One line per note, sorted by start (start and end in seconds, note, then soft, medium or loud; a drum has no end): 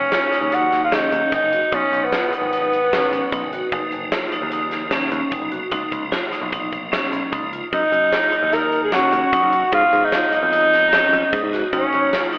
0.00 0.10 F#1 medium
0.00 1.67 F#3 medium
0.00 1.68 A#3 soft
0.00 0.55 C#4 medium
0.00 1.69 D#4 medium
0.12 0.27 F4 medium
0.12 snare loud
0.12 closed hi-hat medium
0.32 0.46 D#4 medium
0.32 snare soft
0.32 closed hi-hat medium
0.41 1.08 D#2 medium
0.51 0.81 D#4 medium
0.51 0.83 F#4 loud
0.51 closed hi-hat medium
0.72 snare soft
0.72 closed hi-hat soft
0.84 0.96 F4 medium
0.92 1.06 C#4 medium
0.92 1.33 D#4 medium
0.92 snare loud
0.92 closed hi-hat medium
1.12 1.22 D#2 medium
1.12 1.27 C#4 medium
1.12 closed hi-hat medium
1.32 1.42 F#1 medium
1.32 1.47 D#4 medium
1.32 1.76 D#4 medium
1.32 kick loud
1.32 snare soft
1.32 closed hi-hat medium
1.42 1.61 F#1 medium
1.53 1.67 F#4 medium
1.53 closed hi-hat medium
1.71 1.82 B1 loud
1.71 3.68 F#3 medium
1.71 3.69 B3 soft
1.71 2.05 C#4 medium
1.71 2.01 D#4 medium
1.71 3.70 D#4 medium
1.71 kick loud
1.71 closed hi-hat medium
1.92 2.11 B1 medium
1.92 closed hi-hat medium
2.04 2.33 B3 medium
2.12 2.27 F4 medium
2.12 snare medium
2.12 closed hi-hat medium
2.33 3.49 B3 medium
2.33 2.47 D#4 medium
2.33 closed hi-hat medium
2.42 3.08 G#1 medium
2.53 2.82 D#4 medium
2.53 closed hi-hat medium
2.73 closed hi-hat soft
2.93 3.07 C#4 medium
2.93 snare loud
2.93 closed hi-hat medium
3.12 3.21 G#1 medium
3.12 3.27 C#4 medium
3.12 closed hi-hat medium
3.32 3.41 B1 medium
3.32 3.48 D#4 medium
3.32 kick medium
3.32 closed hi-hat medium
3.42 3.61 G#1 medium
3.53 3.67 F#4 medium
3.53 closed hi-hat medium
3.70 3.82 F#1 loud
3.70 5.67 F3 medium
3.70 5.68 A#3 medium
3.70 4.02 D#4 medium
3.70 5.69 D#4 medium
3.70 kick loud
3.70 closed hi-hat medium
3.92 4.11 F#1 medium
3.92 closed hi-hat soft
4.12 4.27 F4 medium
4.12 snare loud
4.12 closed hi-hat medium
4.32 4.47 D#4 medium
4.32 closed hi-hat medium
4.42 5.08 D#2 medium
4.52 4.82 D#4 medium
4.52 closed hi-hat medium
4.71 snare soft
4.71 closed hi-hat soft
4.91 5.07 C#4 medium
4.91 snare loud
4.91 closed hi-hat medium
5.12 5.22 D#2 medium
5.12 5.27 C#4 medium
5.12 closed hi-hat medium
5.32 5.41 F#1 medium
5.32 5.47 D#4 medium
5.32 kick medium
5.32 closed hi-hat medium
5.42 5.61 B1 medium
5.52 5.67 F#4 medium
5.52 closed hi-hat medium
5.70 5.82 C#2 loud
5.70 7.67 F3 medium
5.70 7.68 A#3 medium
5.70 6.01 D#4 medium
5.70 7.69 D#4 medium
5.70 kick medium
5.70 closed hi-hat medium
5.92 6.11 C#2 medium
5.92 kick medium
5.92 closed hi-hat medium
6.12 6.27 F4 medium
6.12 snare loud
6.12 closed hi-hat medium
6.32 6.47 D#4 medium
6.32 snare soft
6.32 closed hi-hat medium
6.42 7.08 B1 medium
6.52 6.82 D#4 medium
6.52 kick medium
6.52 closed hi-hat medium
6.73 kick medium
6.73 closed hi-hat soft
6.92 7.07 C#4 medium
6.92 snare loud
6.92 closed hi-hat medium
7.12 7.22 B1 medium
7.12 7.27 C#4 medium
7.12 closed hi-hat medium
7.32 7.42 C#2 medium
7.32 7.47 D#4 medium
7.32 kick loud
7.32 closed hi-hat medium
7.43 7.62 C#2 medium
7.53 7.67 F4 medium
7.53 closed hi-hat medium
7.71 7.82 F#2 loud
7.71 9.68 F#3 soft
7.71 9.69 A#3 soft
7.71 8.55 D#4 loud
7.71 8.02 D#4 medium
7.71 8.56 D#4 medium
7.71 9.70 D#4 medium
7.71 kick medium
7.71 closed hi-hat medium
7.92 8.11 F#2 medium
7.92 closed hi-hat soft
8.13 8.27 F4 medium
8.13 snare loud
8.13 closed hi-hat medium
8.32 8.47 D#4 medium
8.32 closed hi-hat medium
8.43 9.09 D#2 medium
8.53 8.82 D#4 medium
8.53 8.83 A#4 loud
8.53 8.83 A#4 medium
8.53 snare soft
8.53 closed hi-hat medium
8.72 closed hi-hat soft
8.83 8.94 G#4 medium
8.83 8.95 G#4 medium
8.92 9.07 C#4 medium
8.92 9.73 F#4 medium
8.92 snare loud
8.92 closed hi-hat medium
9.12 9.22 D#2 medium
9.12 9.27 C#4 medium
9.12 closed hi-hat medium
9.33 9.42 F#2 medium
9.33 9.48 D#4 medium
9.33 kick loud
9.33 closed hi-hat medium
9.43 9.62 F#2 medium
9.53 9.68 F#4 medium
9.53 closed hi-hat medium
9.71 9.82 G#2 loud
9.71 11.68 G#3 soft
9.71 11.69 B3 soft
9.71 10.02 D#4 medium
9.71 11.70 D#4 medium
9.71 10.06 F4 loud
9.71 10.05 F4 medium
9.71 kick loud
9.71 closed hi-hat medium
9.93 10.12 G#2 medium
9.93 closed hi-hat medium
10.04 10.32 D#4 medium
10.04 10.34 D#4 medium
10.12 10.27 F4 medium
10.12 snare loud
10.12 closed hi-hat medium
10.32 10.47 D#4 medium
10.32 11.49 D#4 medium
10.32 11.50 D#4 loud
10.32 closed hi-hat medium
10.43 11.09 F2 medium
10.52 10.82 D#4 medium
10.52 closed hi-hat medium
10.73 snare soft
10.73 closed hi-hat soft
10.93 11.08 C#4 medium
10.93 snare loud
10.93 closed hi-hat medium
11.12 11.22 F2 medium
11.12 11.27 C#4 medium
11.12 closed hi-hat medium
11.33 11.42 G#2 medium
11.33 11.48 D#4 medium
11.33 kick loud
11.33 closed hi-hat medium
11.44 11.62 G#2 medium
11.53 11.68 F#4 medium
11.53 snare soft
11.53 closed hi-hat medium
11.71 11.82 F#2 loud
11.71 12.38 F#3 medium
11.71 12.38 A#3 soft
11.71 12.29 C#4 medium
11.71 12.30 C#4 medium
11.71 12.02 D#4 medium
11.71 12.38 D#4 medium
11.71 kick medium
11.71 closed hi-hat medium
11.92 12.12 F#2 medium
11.92 closed hi-hat soft
12.13 12.28 F4 medium
12.13 snare medium
12.13 closed hi-hat medium
12.33 12.38 D#4 medium
12.33 closed hi-hat medium